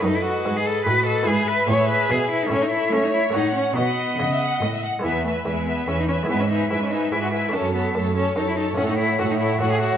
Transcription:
0.00 A3 B3 D#4 D#5
0.04 F#2 A4 B4
0.15 E4
0.25 F#4
0.45 G#2 G#4
0.57 G#4
0.66 A4
0.86 A2 F#4 B4 D#5
1.06 A4
1.23 B3 E4
1.27 G#2 G#4 B4 E5
1.48 B4
1.68 A2 G#4 C#5
1.90 B4
2.10 B2 G#4
2.31 E4
2.43 A3 D#4
2.48 A2 C#4 E4 A4 C#5 E5
2.63 D#4
2.71 E4
2.92 A3 C#4 C#5
3.04 D#4
3.14 E4
3.30 A3 C#4 F#4
3.34 A2 D#4 F#5
3.56 C#4
3.74 B2 B3 D#4 F#4 D#5 F#5
4.19 C#3 D#5
4.32 E5
4.41 F#5
4.62 A2 D#5
4.74 E5
4.84 F#5
4.99 G#3 B3 E4
5.04 E2 B3 B4 E5 G#5
5.25 A3 B4 E5 G#5
5.45 E2 G#3 B4 E5 G#5
5.67 B3 B4 E5 G#5
5.87 E2 C#4 B4 E5 G#5
6.00 D#4
6.08 C#4 B4 E5 G#5
6.23 G#3 B3 E4
6.29 G#2 B3 B4 E5 G#5
6.40 C#4
6.50 D#4 B4 E5 G#5
6.70 G#2 E4 B4 E5 G#5
6.82 C#4
6.91 D#4 B4 E5 G#5
7.12 G#2 E4 B4 E5 G#5
7.24 F#4
7.33 E4 B4 E5 G#5
7.49 A3 C#4
7.53 F#2 C#4 A4 C#5 A5
7.74 B3 A4 C#5 A5
7.95 F#2 A3 A4 C#5 A5
8.15 C#4 A4 C#5 A5
8.36 F#2 D#4 A4 C#5 A5
8.48 E4
8.57 D#4 A4 C#5 A5
8.75 A2 A3 C#4 A4 C#5 F#5
8.89 D#4
8.98 E4 A4 C#5 F#5
9.18 A2 F#4 A4 C#5 F#5
9.31 D#4
9.39 E4 A4 C#5 F#5
9.60 A2 F#4 A4 C#5 F#5
9.72 G#4
9.80 F#4 A4 C#5 F#5

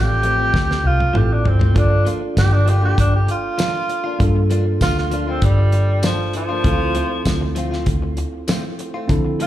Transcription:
Already playing: A1 C4 F4 G4 A4 E5
0.08 muted clean electric guitar stroke
0.23 F3 A3 C4, closed hi-hat
0.38 F3 A3 C4
0.53 D2, muted clean electric guitar stroke, kick, snare
0.69 muted clean electric guitar stroke, snare
0.84 C2 F4, muted clean electric guitar stroke
1.00 high tom
1.13 A1 F3 A3 C4 E4 F4 G4 A4, mid tom
1.29 D4, muted clean electric guitar stroke
1.45 G1 C4, muted clean electric guitar stroke, floor tom
1.59 A3 C4, floor tom
1.74 G1 F3 A#3 D4 F4 A4, kick, closed hi-hat
1.78 D4
1.91 muted clean electric guitar stroke
2.05 F3 A#3 D4 F4, closed hi-hat
2.21 muted clean electric guitar stroke
2.37 G1 G4, kick, snare, closed hi-hat, tambourine
2.52 D4, muted clean electric guitar stroke
2.66 F3 A#3 D4 F4 G4, closed hi-hat
2.81 F3 A#3 D4 F4 G4
2.96 G1 D4, muted clean electric guitar stroke, kick, closed hi-hat
3.12 G4, muted clean electric guitar stroke
3.27 F4, muted clean electric guitar stroke, closed hi-hat
3.58 F3 A#3 D4 F4, snare, closed hi-hat, tambourine
3.73 muted clean electric guitar stroke
3.89 muted clean electric guitar stroke, closed hi-hat
4.04 A#3 D4 F4
4.18 G2 A#3 D4 F4 A4, kick, closed hi-hat
4.35 muted clean electric guitar stroke
4.50 F3 A#3 D4 F4, closed hi-hat
4.66 muted clean electric guitar stroke
4.81 D2 F4, kick, snare, closed hi-hat, tambourine
4.96 F4, muted clean electric guitar stroke, snare
5.11 F3 A#3 D4 F4, closed hi-hat
5.27 F3 A#3 C4 D4 F4
5.42 G1 G3, kick, closed hi-hat
5.58 muted clean electric guitar stroke
5.72 muted clean electric guitar stroke, closed hi-hat
6.03 F3 A#3 D4 F4, snare, closed hi-hat, tambourine
6.19 muted clean electric guitar stroke
6.33 F3, muted clean electric guitar stroke, closed hi-hat
6.49 A#3 D4 F4
6.63 D2 F3 A3 C4 E4 F4 A4, kick, closed hi-hat
6.80 muted clean electric guitar stroke
6.95 F3 A3 C4 F4, closed hi-hat
7.10 muted clean electric guitar stroke
7.25 D2, kick, snare, closed hi-hat, tambourine
7.41 muted clean electric guitar stroke
7.55 F3 A3 C4 F4, closed hi-hat
7.71 F3 A3 C4 F4, snare
7.86 D2, muted clean electric guitar stroke, kick, closed hi-hat
8.02 muted clean electric guitar stroke
8.17 muted clean electric guitar stroke, closed hi-hat
8.48 F3 A3 C4 F4, snare, closed hi-hat, tambourine
8.64 muted clean electric guitar stroke
8.79 muted clean electric guitar stroke, closed hi-hat
8.94 A3 C4 F4
9.07 D3 F3 C4 E4 A4, kick, closed hi-hat
9.25 muted clean electric guitar stroke
9.40 F3 A3 C4 F4, closed hi-hat

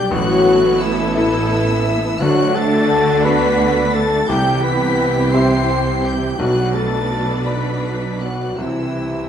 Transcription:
Already playing: B2 G3 D4 G4 D5 G5 G6
0.11 A1 A2 F#3 B3 E4 F#4 A4 B4 F#5 F#6
0.45 B3
0.79 E3 E4 A4 E5 E6
1.14 E3 E4 A4 B4 E5 E6
1.50 E5
1.86 B4
2.20 D2 D3 F#3 A3 D4 F#4 D5 F#5 F#6
2.55 A3 D4 A4 A5 A6
3.24 B3 F#4 A4 B4 D5 B5 B6
3.60 F#5
3.93 A3 A4 D5 A5 A6
4.28 C2 C3 E3 G3 E4 G4 G5 G6
4.63 B3 E4 B4 B5 B6
4.99 E5
5.33 C4 G4 C5 E5 C6 C7
5.70 G5
6.04 G3 G4 E5 G5 G6
6.39 B1 B2 F#3 D4 F#4 B4 D5 F#5 F#6
6.74 A3 F#4 A4 A5 A6
7.11 D5
7.46 B3 B4 D5 F#5 B5 B6
7.84 B5
8.20 F#3 F#4 F#5 F#6
8.58 C2 C3 E3 E4 G4 C5 E5 E6
8.97 E4

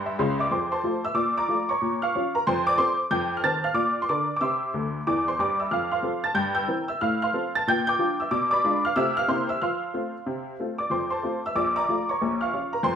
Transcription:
Already playing: G2
0.06 E5
0.19 C#2 C#3 C6
0.39 D5 E5 D6
0.51 F2 C5 C6
0.72 C5 A5 C6
0.83 F3 A3 F4
1.05 E5 E6
1.14 A#2 D5 D6
1.38 D5 A#5 D6
1.48 F3 A3 F4
1.69 C#5 A#5 C#6
1.82 A#2
2.02 F5 C#6 F6
2.15 F3 C#4 F4
2.35 A#4 A#5
2.47 F2 C5 C6
2.67 D5 D6
2.77 F3 C4 A4 C5 C6
3.11 F2 G5 G6
3.37 F6
3.44 D#3 C4 C5 A5 A6
3.64 F5 F6
3.74 A#2 D5 D6
4.02 C6
4.09 D3 D4 A#4 D5 D6
4.36 D6
4.41 C3 E5 C6 E6
4.74 D2 D3
5.07 E2 E3 D5 D6
5.28 C5 C6
5.39 G2 G3 D5 D6
5.60 E5 E6
5.71 F2 F5 F6
5.91 F5 C6 F6
6.02 F3 C4 A4
6.24 A5 A6
6.35 G2 G5 G6
6.55 G5 E6 G6
6.68 E3 C4 A#4
6.88 E5 E6
7.01 A2 F5 F6
7.22 F5 C6 F6
7.33 F3 C4 A4
7.55 A5 A6
7.67 A#2 G5 G6
7.87 G5 D6 G6
7.99 F3 D4 F4
8.20 E5 E6
8.31 B2 D5 D6
8.51 D5 B5 D6
8.64 G#3 D4 F4
8.85 F5 F6
8.96 C3 A3 C4 F4 E5 E6
9.17 F5 F6
9.28 C3 A#3 C4 E4 C5 C6
9.49 E5 E6
9.62 F3 F5 C6 F6
9.94 A3 C4 F4
10.26 C3
10.60 A3 C4 F4
10.78 D5 D6
10.90 F2 F3 C5 C6
11.10 C5 A5 C6
11.23 A3 C4 F4
11.46 E5 E6
11.55 A#1 A#2 D5 D6
11.76 D5 A#5 D6
11.89 F3 A3 F4
12.09 C#5 A#5 C#6
12.21 A#1 A#2
12.41 F5 C#6 F6
12.53 F3 C#4 F4
12.73 A#4 A#5
12.83 F2 F3 C5 C6

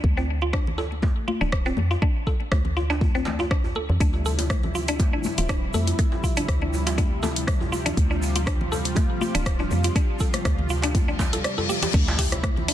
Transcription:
0.04 D2, kick, muted conga, high conga
0.17 C4, djembe tone
0.42 F4, muted conga
0.53 D4, kick, cross-stick, djembe tone
0.67 muted conga, low conga
0.78 A4, djembe tone
0.92 muted conga
1.02 A3, kick, djembe slap, high conga, djembe tone, djembe bass
1.28 F4, muted conga, high conga
1.41 D1 D4, djembe tone, low conga
1.52 kick, cross-stick, muted conga
1.66 C4, djembe tone
1.77 F2, muted conga, high conga, low conga
1.91 F4, djembe tone
2.02 D4, kick, muted conga, high conga
2.27 A4, kick, djembe tone
2.40 muted conga
2.52 D2 A3, kick, cross-stick, djembe tone
2.65 muted conga, low conga
2.77 F4, djembe tone
2.90 D4, muted conga, djembe slap
3.01 kick, high conga, djembe bass
3.15 C4, djembe tone
3.25 djembe slap, muted conga, high conga, low conga
3.39 F4, djembe tone
3.51 D4, kick, cross-stick, muted conga
3.64 djembe tone, djembe bass
3.75 A4, muted conga
3.90 F2, low conga
4.00 D2 C3 F3 G3 D4 E4, kick, closed hi-hat, muted conga, high conga, shaker
4.13 djembe tone
4.26 A4, shaker
4.38 closed hi-hat, muted conga, djembe tone, shaker
4.50 A3, kick, cross-stick, closed hi-hat, shaker
4.63 muted conga, djembe tone, low conga
4.75 F4, shaker
4.88 D4, closed hi-hat, muted conga, shaker
4.99 kick, closed hi-hat, djembe slap, djembe tone, high conga, djembe bass, shaker
5.13 D4
5.24 muted conga, high conga, djembe tone, shaker
5.37 D1 F4, closed hi-hat, low conga, shaker
5.49 D4, kick, cross-stick, closed hi-hat, muted conga, djembe tone, shaker
5.74 F2 A4, muted conga, high conga, low conga, shaker
5.87 closed hi-hat, djembe tone, shaker
5.99 A3, kick, closed hi-hat, muted conga, high conga, shaker
6.12 djembe tone
6.24 F4, kick, shaker
6.36 D4, closed hi-hat, muted conga, djembe tone, shaker
6.48 D2, kick, cross-stick, closed hi-hat, shaker
6.61 D4, muted conga, low conga
6.74 djembe tone, shaker
6.87 F4, closed hi-hat, djembe slap, muted conga, shaker
6.98 D4, kick, closed hi-hat, djembe tone, high conga, djembe bass, shaker
7.23 A4, djembe slap, muted conga, high conga, djembe tone, low conga, shaker
7.36 closed hi-hat, shaker
7.47 A3, kick, cross-stick, closed hi-hat, muted conga, shaker
7.61 djembe tone, djembe bass
7.72 F4, muted conga, shaker
7.86 D4, closed hi-hat, djembe tone, low conga, shaker
7.97 D2 F4, kick, closed hi-hat, muted conga, high conga, shaker
8.11 D4, djembe tone
8.22 shaker
8.36 F4, closed hi-hat, muted conga, shaker
8.46 D4, kick, cross-stick, closed hi-hat, djembe tone, shaker
8.61 muted conga, low conga
8.72 A4, djembe tone, shaker
8.85 closed hi-hat, muted conga, shaker
8.95 A3, kick, closed hi-hat, djembe slap, high conga, djembe tone, djembe bass, shaker
9.21 F4, muted conga, high conga, shaker
9.35 D1 D4, closed hi-hat, djembe tone, low conga, shaker
9.46 kick, cross-stick, closed hi-hat, shaker
9.59 D4, djembe tone
9.71 F2, muted conga, high conga, low conga, shaker
9.84 F4, closed hi-hat, djembe tone, shaker
9.95 D4, kick, closed hi-hat, muted conga, high conga, shaker
10.20 A4, kick, djembe tone, shaker
10.33 cross-stick, closed hi-hat, muted conga, high conga, shaker
10.45 D2 A3, kick, cross-stick, closed hi-hat, djembe tone, shaker
10.58 muted conga, low conga
10.69 F4, djembe tone, shaker
10.82 D4, closed hi-hat, djembe slap, muted conga, shaker
10.95 kick, closed hi-hat, reverse cymbal, high conga, djembe bass, shaker
11.08 D4, djembe tone
11.19 kick, djembe slap, muted conga, high conga, low conga, shaker
11.33 A4, closed hi-hat, djembe tone, shaker
11.44 D5, cross-stick, closed hi-hat, muted conga, shaker
11.58 A4, djembe tone, djembe bass
11.69 G4, muted conga, shaker
11.82 G4, closed hi-hat, djembe slap, low conga, shaker
11.94 D2 C3 F3 G3 D4 E4, kick, closed hi-hat, crash, sub drop, muted conga, high conga
12.08 djembe slap, djembe tone
12.18 G4, kick, open hi-hat, djembe slap
12.32 cross-stick, closed hi-hat, muted conga, djembe tone
12.43 A3, kick, cross-stick, closed hi-hat
12.57 muted conga, djembe tone, low conga
12.68 D4, open hi-hat

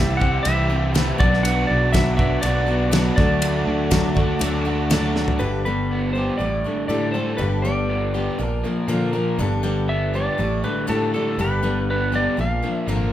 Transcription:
Already playing: C2 C3 E3 G3 C4 E4 G4 C5 E5 G5 E6
0.17 E4 G4 F#5
0.21 G3 C4, kick
0.43 C2 C3 E3 G3 C4 E4 G4 E5, ride bell
0.70 G3 C4 E4 G4
0.94 C3 E3 G3 C4 E4 G4, snare, ride bell
1.18 B1 B2 F#3 B3 D4 F#4 B4 D5 F#5 D6, kick
1.34 snare
1.43 B2 F#3 B3 D4 F#4 F#5, ride bell
1.67 B1 D4 F#4 D5
1.72 B3
1.93 B2 F#3 B3 D4 F#4 E5, kick, snare, ride bell
2.17 B3 D4 F#4 E5, kick
2.41 B1 B2 F#3 B3 D4 F#4 D5, ride bell
2.66 B3 D4 F#4
2.91 B2 F#3 B3 D4 F#4, snare, ride bell
3.16 D2 D3 F#3 A3 D4 F#4 A4 D5, kick, snare
3.42 D3 A3 D4 F#4, ride bell
3.67 D2 A3 D4 F#4
3.91 D3 F#3 A3 D4 F#4, kick, snare, ride bell
4.15 A3 D4 F#4, kick
4.39 D2 D3 F#3 A3 D4 F#4, ride bell
4.65 A3 D4 F#4
4.90 D3 F#3 A3 D4 F#4, snare, ride bell
5.16 A3 D4 F#4, snare
5.28 floor tom
5.39 G1 G2 D3 G3 B3 D4 G4 B4
5.65 G2 D3 G3 B3 D4 G4 B4
5.91 B3
6.13 B3 D4 G4 C5
6.17 G3
6.38 A1 A2 G3 A3 D4 G4 D5
6.64 D3 G3 A3 D4 G4
6.88 A2 D3 G3 A3 D4 G4 D5
7.12 G3 A3 D4 G4 A4 C5
7.37 G1 G2 D3 G3 B3 D4 G4 B4
7.62 G2 D3 G3 B3 D4 G4 D5
7.89 B3
8.14 G3 B3 D4 G4
8.38 A#1 A#2 F3 A#3 D4 A#4
8.64 F3 A#3 D4 A#4
8.88 A#2 D3 F3 A#3 D4 A#4
9.13 F3 A#3 D4 A#4
9.39 G1 G2 D3 G3 B3 D4 G4
9.63 G2 D3 G3 B3 D4 G4
9.88 B3 E5
10.14 G3 B3 D4 G4 D5
10.38 A1 A2 G3 A3 D4 G4
10.64 D3 G3 A3 D4 G4 B4
10.87 A2 D3 G3 A3 D4 G4 A4
11.13 G3 A3 D4 G4 A4
11.38 G1 G2 D3 G3 B3 D4 G4 B4
11.62 G2 D3 G3 B3 D4 G4
11.90 B3 B4
12.12 G3 B3 D4 G4 D5
12.37 A#1 A#2 F3 A#3 D4 A#4 F5
12.62 F3 A#3 D4 A#4
12.75 E5
12.88 G#1 A#2 D3 F3 A#3 D4 A#4

